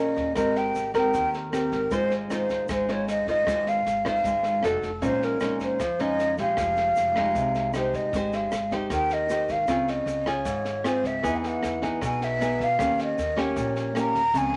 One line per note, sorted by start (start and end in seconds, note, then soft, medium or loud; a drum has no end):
0.00 0.13 A#1 medium
0.00 0.35 A#2 medium
0.00 0.33 C#4 medium
0.00 0.34 G#4 medium
0.00 0.34 A#4 medium
0.00 0.36 D#5 medium
0.16 0.35 D#2 medium
0.16 kick soft
0.16 snare soft
0.16 shaker soft
0.36 0.72 G#1 medium
0.36 1.12 G#3 medium
0.36 0.91 C4 medium
0.36 0.92 G4 soft
0.36 0.92 A#4 medium
0.36 0.59 D#5 loud
0.36 kick medium
0.36 cross-stick medium
0.36 snare soft
0.36 shaker medium
0.56 0.95 G5 medium
0.56 snare soft
0.56 shaker soft
0.75 1.11 G#1 medium
0.75 snare soft
0.75 shaker medium
0.94 1.49 C4 medium
0.94 1.50 G4 medium
0.94 1.50 A#4 medium
0.94 1.29 G5 loud
0.94 kick soft
0.94 cross-stick medium
0.94 snare soft
0.94 shaker soft
1.14 1.68 D#2 loud
1.14 1.89 D#3 medium
1.14 kick soft
1.14 snare soft
1.14 shaker medium
1.34 snare soft
1.34 shaker soft
1.52 1.88 C4 soft
1.52 1.89 G4 medium
1.52 1.89 A#4 soft
1.52 1.96 A#4 medium
1.52 cross-stick medium
1.52 snare soft
1.52 shaker medium
1.72 1.90 G#1 medium
1.72 kick soft
1.72 snare soft
1.72 shaker soft
1.91 2.28 G#1 medium
1.91 2.67 G#3 medium
1.91 2.27 D#4 medium
1.91 2.28 F4 medium
1.91 2.28 C5 medium
1.91 2.13 C5 loud
1.91 kick medium
1.91 snare soft
1.91 shaker medium
2.11 snare soft
2.11 shaker soft
2.30 2.67 G#1 medium
2.30 2.86 D#4 medium
2.30 2.86 F4 medium
2.30 2.86 C5 medium
2.30 2.68 C5 medium
2.30 cross-stick medium
2.30 snare soft
2.30 shaker medium
2.49 kick soft
2.49 snare soft
2.49 shaker soft
2.68 3.23 G#1 medium
2.68 3.45 G#3 medium
2.68 2.93 C5 medium
2.68 kick medium
2.68 cross-stick medium
2.68 snare soft
2.68 shaker medium
2.89 3.24 D#4 medium
2.89 3.25 F4 medium
2.89 3.25 C5 medium
2.89 3.09 C#5 medium
2.89 snare soft
2.89 shaker soft
3.08 3.27 D#5 medium
3.08 snare soft
3.08 shaker medium
3.27 3.45 G#1 medium
3.27 3.44 D#4 medium
3.27 3.44 F4 medium
3.27 3.45 C5 medium
3.27 3.70 D#5 loud
3.27 kick soft
3.27 snare soft
3.27 shaker soft
3.47 3.83 G#1 medium
3.47 4.23 G#3 medium
3.47 3.86 D#4 medium
3.47 3.86 F4 medium
3.47 3.86 C5 medium
3.47 kick medium
3.47 cross-stick medium
3.47 snare soft
3.47 shaker medium
3.66 4.06 F5 medium
3.66 snare soft
3.66 shaker soft
3.86 4.22 G#1 medium
3.86 snare soft
3.86 shaker medium
4.05 4.61 D#4 medium
4.05 4.60 F4 medium
4.05 4.61 C5 medium
4.05 4.68 F5 medium
4.05 kick soft
4.05 cross-stick medium
4.05 snare soft
4.05 shaker soft
4.24 4.61 G#1 medium
4.24 4.62 G#3 medium
4.24 kick medium
4.24 snare soft
4.24 shaker medium
4.43 snare soft
4.43 shaker soft
4.63 4.82 F1 loud
4.63 4.89 D#4 soft
4.63 4.89 F#4 soft
4.63 4.89 A4 medium
4.63 5.07 A4 medium
4.63 cross-stick medium
4.63 snare soft
4.63 shaker medium
4.82 5.01 F1 medium
4.82 kick soft
4.82 snare soft
4.82 shaker soft
5.02 5.38 A#1 loud
5.02 5.78 A#2 medium
5.02 5.38 G#3 soft
5.02 5.38 C#4 medium
5.02 5.38 D#4 medium
5.02 5.26 C5 medium
5.02 kick medium
5.02 snare soft
5.02 shaker medium
5.22 5.62 A#4 medium
5.22 snare soft
5.22 shaker soft
5.40 5.77 A#1 medium
5.40 5.80 G#3 medium
5.40 5.80 C#4 medium
5.40 5.80 D#4 medium
5.40 cross-stick medium
5.40 snare soft
5.40 shaker medium
5.60 6.03 C5 medium
5.60 kick soft
5.60 snare soft
5.60 shaker soft
5.80 6.34 F2 medium
5.80 6.56 F3 medium
5.80 kick medium
5.80 cross-stick medium
5.80 snare soft
5.80 shaker medium
5.99 6.35 G#3 medium
5.99 6.36 C#4 medium
5.99 6.36 D#4 medium
5.99 6.39 D#5 loud
5.99 snare soft
5.99 shaker soft
6.19 snare soft
6.19 shaker medium
6.38 6.56 A#1 medium
6.38 7.13 G#3 medium
6.38 7.13 D#4 medium
6.38 7.14 G4 medium
6.38 7.71 F5 medium
6.38 kick soft
6.38 snare soft
6.38 shaker soft
6.57 6.93 F1 loud
6.57 7.34 F3 medium
6.57 kick medium
6.57 cross-stick medium
6.57 snare soft
6.57 shaker medium
6.76 snare soft
6.76 shaker soft
6.96 7.33 F1 medium
6.96 snare soft
6.96 shaker medium
7.16 7.72 G#3 medium
7.16 7.72 D#4 medium
7.16 7.72 G4 medium
7.16 kick soft
7.16 cross-stick medium
7.16 snare soft
7.16 shaker soft
7.35 7.89 C2 medium
7.35 8.12 C3 medium
7.35 kick medium
7.35 snare soft
7.35 shaker medium
7.55 snare soft
7.55 shaker soft
7.74 8.11 G#3 soft
7.74 8.11 D#4 medium
7.74 8.11 G4 medium
7.74 7.97 C5 medium
7.74 cross-stick medium
7.74 snare soft
7.74 shaker medium
7.94 8.12 G1 medium
7.94 8.36 D#5 medium
7.94 kick soft
7.94 snare soft
7.94 shaker soft
8.13 8.49 G#1 loud
8.13 8.90 G#3 soft
8.13 8.52 D#4 soft
8.13 8.53 G4 medium
8.13 8.53 C5 medium
8.13 kick medium
8.13 snare soft
8.13 shaker medium
8.33 8.72 F5 medium
8.33 snare soft
8.33 shaker soft
8.52 8.88 G#1 medium
8.52 cross-stick medium
8.52 snare soft
8.52 shaker medium
8.71 9.27 D#4 medium
8.71 9.27 G4 medium
8.71 9.27 C5 medium
8.71 kick soft
8.71 snare soft
8.71 shaker soft
8.90 9.45 D#2 medium
8.90 9.67 D#3 medium
8.90 kick medium
8.90 cross-stick medium
8.90 snare soft
8.90 shaker medium
8.94 9.15 G5 medium
9.10 9.53 D#5 medium
9.10 snare soft
9.10 shaker soft
9.29 9.55 D#4 soft
9.29 9.55 G4 medium
9.29 9.55 C5 medium
9.29 snare soft
9.29 shaker medium
9.49 9.67 G#1 medium
9.49 9.91 F5 medium
9.49 kick soft
9.49 snare soft
9.49 shaker soft
9.68 10.04 C#2 medium
9.68 10.44 C#3 medium
9.68 10.24 C4 soft
9.68 10.24 F4 medium
9.68 10.24 G#4 medium
9.68 kick medium
9.68 cross-stick medium
9.68 snare soft
9.68 shaker medium
9.88 10.30 D#5 medium
9.88 snare soft
9.88 shaker soft
10.06 10.43 C#2 medium
10.06 snare soft
10.06 shaker medium
10.26 10.82 F4 medium
10.26 10.82 G#4 medium
10.26 10.89 C#5 medium
10.26 kick soft
10.26 cross-stick medium
10.26 snare soft
10.26 shaker soft
10.45 11.00 G#1 medium
10.45 11.21 G#2 medium
10.45 kick medium
10.45 snare soft
10.45 shaker medium
10.65 snare soft
10.65 shaker soft
10.84 11.20 C4 medium
10.84 11.21 F4 medium
10.84 11.21 G#4 medium
10.84 11.08 C5 medium
10.84 cross-stick medium
10.84 snare soft
10.84 shaker medium
11.04 11.22 C#2 medium
11.04 11.38 E5 loud
11.04 kick soft
11.04 snare soft
11.04 shaker soft
11.23 11.60 E2 medium
11.23 11.99 E3 medium
11.23 11.79 B3 medium
11.23 11.79 D#4 medium
11.23 11.79 G#4 medium
11.23 kick medium
11.23 snare soft
11.23 shaker medium
11.36 11.48 G#5 medium
11.43 11.84 F#5 medium
11.43 snare soft
11.43 shaker soft
11.63 11.99 E2 medium
11.63 cross-stick medium
11.63 snare soft
11.63 shaker medium
11.82 12.37 B3 medium
11.82 12.37 D#4 medium
11.82 12.38 G#4 medium
11.82 kick soft
11.82 snare soft
11.82 shaker soft
12.01 12.56 B1 medium
12.01 12.77 B2 medium
12.01 12.26 G#5 loud
12.01 kick medium
12.01 cross-stick medium
12.01 snare soft
12.01 shaker medium
12.21 12.65 E5 loud
12.21 snare soft
12.21 shaker soft
12.41 12.66 B3 medium
12.41 12.66 D#4 medium
12.41 12.66 G#4 medium
12.41 snare soft
12.41 shaker medium
12.59 12.78 E2 medium
12.59 kick soft
12.59 snare soft
12.59 shaker soft
12.64 13.01 F5 loud
12.79 13.15 D#2 medium
12.79 13.55 D#3 medium
12.79 13.18 A#3 medium
12.79 13.18 C#4 medium
12.79 13.18 G4 medium
12.79 kick medium
12.79 cross-stick medium
12.79 snare soft
12.79 shaker medium
12.99 snare soft
12.99 shaker soft
13.03 13.42 D#5 medium
13.18 13.54 D#2 medium
13.18 snare soft
13.18 shaker medium
13.36 13.92 A#3 medium
13.36 13.92 C#4 medium
13.36 13.92 G4 medium
13.36 kick soft
13.36 cross-stick medium
13.36 snare soft
13.36 shaker soft
13.41 14.01 C#5 medium
13.56 14.11 A#1 medium
13.56 14.32 A#2 medium
13.56 kick medium
13.56 snare soft
13.56 shaker medium
13.76 snare soft
13.76 shaker soft
13.95 14.20 A#3 medium
13.95 14.21 C#4 soft
13.95 14.21 G4 medium
13.95 cross-stick medium
13.95 snare soft
13.95 shaker medium
14.00 14.39 A#5 loud
14.15 14.33 D#2 medium
14.15 kick soft
14.15 snare soft
14.15 shaker soft
14.34 14.56 C#2 medium
14.34 14.56 C#3 medium
14.34 14.56 F3 soft
14.34 14.56 G#3 medium
14.34 14.56 C4 medium
14.34 14.56 G#5 loud
14.34 kick medium
14.34 snare soft
14.34 shaker medium
14.53 snare soft